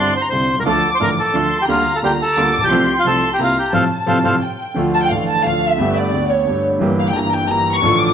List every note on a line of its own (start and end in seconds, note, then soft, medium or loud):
0.00 0.11 G1 soft
0.00 0.11 G2 soft
0.00 0.11 D3 soft
0.00 0.11 G3 soft
0.00 0.11 C4 soft
0.00 0.14 D4 medium
0.00 0.11 E4 soft
0.00 0.14 D5 medium
0.00 0.48 C6 loud
0.16 0.21 C5 medium
0.16 0.22 C6 medium
0.22 0.28 A#5 medium
0.29 0.45 C2 soft
0.29 0.46 C3 soft
0.29 0.45 D3 soft
0.29 0.46 G3 soft
0.29 0.46 C4 soft
0.29 0.46 E4 soft
0.29 0.56 C5 medium
0.29 0.59 C6 medium
0.53 0.57 B1 soft
0.58 0.61 C2 soft
0.58 0.63 A#4 medium
0.58 0.63 A#5 medium
0.62 0.66 C#2 medium
0.62 0.80 A3 medium
0.62 0.80 D4 medium
0.66 0.80 D2 medium
0.66 0.80 D3 medium
0.66 0.80 F3 medium
0.66 0.80 A3 medium
0.66 0.80 F4 medium
0.66 0.89 A4 medium
0.66 1.23 D6 medium
0.70 0.90 A5 medium
0.91 0.98 C5 medium
0.91 0.98 C6 medium
0.91 0.93 D6 soft
0.99 1.15 A1 soft
0.99 1.15 A2 soft
0.99 1.14 D3 soft
0.99 1.15 F3 soft
0.99 1.14 A3 soft
0.99 1.15 A3 soft
0.99 1.14 D4 soft
0.99 1.14 F4 soft
0.99 1.15 F4 soft
0.99 1.09 A#4 medium
1.04 1.11 A#5 medium
1.19 1.58 A4 medium
1.19 1.63 A5 medium
1.27 1.34 D6 medium
1.33 1.48 D2 soft
1.33 1.48 D3 soft
1.33 1.48 F3 soft
1.33 1.48 A3 soft
1.33 1.49 A3 soft
1.33 1.49 D4 soft
1.33 1.49 F4 soft
1.33 1.69 C6 medium
1.62 1.65 G4 medium
1.62 1.65 G5 medium
1.68 1.83 D2 medium
1.68 1.83 D3 medium
1.68 1.83 G3 medium
1.68 1.83 A#3 medium
1.68 1.83 F4 medium
1.68 1.93 F4 medium
1.68 1.96 F5 medium
1.68 2.37 A#5 medium
1.96 1.99 A4 medium
1.96 1.99 A5 medium
2.02 2.17 D2 soft
2.02 2.17 D3 soft
2.02 2.17 G3 soft
2.02 2.17 A#3 soft
2.02 2.17 F4 soft
2.02 2.12 G4 medium
2.02 2.12 G5 medium
2.22 2.60 A4 medium
2.22 2.65 A5 medium
2.37 2.51 D2 soft
2.37 2.51 D3 soft
2.37 2.51 G3 soft
2.37 2.51 A#3 soft
2.37 2.51 F4 soft
2.37 2.71 D6 medium
2.58 2.62 A1 soft
2.58 2.66 A#1 soft
2.63 2.71 B1 medium
2.63 2.95 G4 medium
2.63 2.98 G5 medium
2.71 2.85 C2 medium
2.71 2.85 C3 medium
2.71 2.85 F3 medium
2.71 2.85 A3 medium
2.71 2.85 C4 medium
2.71 2.85 F4 medium
2.71 3.39 C6 medium
2.99 3.06 F4 medium
2.99 3.07 F5 medium
3.05 3.19 C2 soft
3.05 3.19 C3 soft
3.05 3.19 F3 soft
3.05 3.19 A3 soft
3.05 3.19 C4 soft
3.05 3.19 F4 soft
3.05 3.20 F4 soft
3.05 3.30 A4 medium
3.05 3.30 A5 medium
3.34 3.40 G4 soft
3.34 3.40 G5 medium
3.38 3.53 C2 soft
3.38 3.53 C3 soft
3.38 3.53 G3 soft
3.38 3.53 A#3 soft
3.38 3.53 C4 soft
3.38 3.53 E4 soft
3.38 3.70 A#5 medium
3.43 3.57 F4 medium
3.43 3.58 F5 medium
3.59 3.73 G4 medium
3.59 3.73 G5 medium
3.72 3.84 A2 medium
3.72 3.84 C3 medium
3.72 3.84 F3 medium
3.72 3.83 G3 medium
3.72 3.84 A3 medium
3.72 3.84 C4 medium
3.72 3.84 A4 medium
3.72 3.84 C5 medium
3.72 3.84 F5 medium
3.72 4.42 A5 medium
4.06 4.18 A2 medium
4.06 4.18 C3 medium
4.06 4.18 F3 medium
4.06 4.18 G3 medium
4.06 4.18 A3 medium
4.06 4.18 C4 medium
4.06 4.18 A4 medium
4.06 4.18 C5 medium
4.06 4.19 F5 medium
4.24 4.35 A2 medium
4.24 4.35 C3 medium
4.24 4.35 F3 medium
4.24 4.35 G3 medium
4.24 4.35 A3 medium
4.24 4.35 C4 medium
4.24 4.36 A4 medium
4.24 4.35 C5 medium
4.24 4.36 F5 medium
4.42 4.76 G5 medium
4.74 5.09 D2 medium
4.74 5.07 D3 medium
4.74 5.08 F3 soft
4.74 5.09 A3 soft
4.74 5.09 D4 soft
4.74 5.09 F4 medium
4.78 5.10 F4 medium
4.94 5.02 A5 medium
5.02 5.10 G5 medium
5.09 5.43 A1 soft
5.09 5.43 A2 soft
5.09 5.42 D3 soft
5.09 5.43 F3 soft
5.09 5.43 A3 soft
5.09 5.43 D4 soft
5.09 5.43 F4 soft
5.09 5.44 F4 soft
5.09 5.28 F5 medium
5.29 5.44 A5 medium
5.43 5.77 D2 soft
5.43 5.75 D3 soft
5.43 5.77 F3 soft
5.43 5.77 A3 soft
5.43 5.76 A3 soft
5.43 5.77 D4 soft
5.43 5.77 F4 soft
5.43 5.71 F5 medium
5.47 5.78 F4 soft
5.72 5.97 E5 medium
5.77 6.11 G1 medium
5.77 6.11 G2 medium
5.77 6.09 D3 soft
5.77 6.11 A3 soft
5.77 6.11 A3 medium
5.77 6.11 B3 medium
5.77 6.11 B3 soft
5.77 6.11 G4 medium
5.77 6.12 G4 medium
5.99 6.31 D5 medium
6.13 6.45 D2 soft
6.13 6.43 D3 soft
6.13 6.45 A3 soft
6.13 6.45 B3 soft
6.13 6.45 G4 soft
6.13 6.46 G4 soft
6.31 6.64 C#5 medium
6.45 6.79 G1 soft
6.45 6.77 G2 soft
6.45 6.78 D3 soft
6.45 6.79 A3 soft
6.45 6.79 B3 soft
6.45 6.79 G4 soft
6.49 6.80 G4 soft
6.80 7.12 G1 medium
6.80 7.13 G2 medium
6.80 7.10 G2 medium
6.80 7.11 E3 soft
6.80 7.12 G3 soft
6.80 7.13 A#3 medium
6.80 7.13 E4 medium
6.80 7.13 G4 medium
6.80 7.14 G4 medium
6.99 7.06 F5 medium
7.08 7.45 G2 soft
7.08 7.16 G5 medium
7.13 7.46 G1 soft
7.13 7.47 G2 soft
7.13 7.46 E3 soft
7.13 7.47 G3 soft
7.13 7.47 A#3 soft
7.13 7.47 E4 soft
7.13 7.47 G4 soft
7.13 7.48 G4 soft
7.13 7.33 A#5 medium
7.33 7.49 G5 medium
7.48 7.81 G1 soft
7.48 7.81 G2 soft
7.48 7.81 E3 soft
7.48 7.81 G3 soft
7.48 7.81 A#3 soft
7.48 7.82 A#3 soft
7.48 7.81 E4 soft
7.48 7.81 G4 soft
7.48 7.82 G4 soft
7.48 7.75 A#5 medium
7.75 8.00 C#6 medium
7.82 8.13 A1 medium
7.82 8.13 A2 medium
7.82 8.13 D3 soft
7.82 8.13 F3 soft
7.82 8.13 A3 medium
7.82 8.13 A3 soft
7.82 8.13 D4 medium
7.82 8.13 F4 medium
7.82 8.13 A4 medium
8.00 8.13 D6 medium